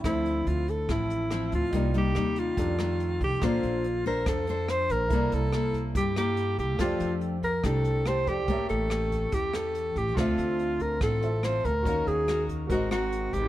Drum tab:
HH |xxxxxxxx|xxxxxxxx|xxxxxxxx|xxxxxxxx|
SD |r---r-r-|--r--r--|r---r-r-|--r--r--|
BD |o---o---|o---o--o|o--oo--o|o--oo--o|

HH |xxxxxxxx|xxxxxxxx|xxxxxxxx|xxxxxxxx|
SD |r---r-r-|--r--r--|r---r-r-|--r--r--|
BD |o--oo--o|o--oo--o|o--oo--o|o--oo--o|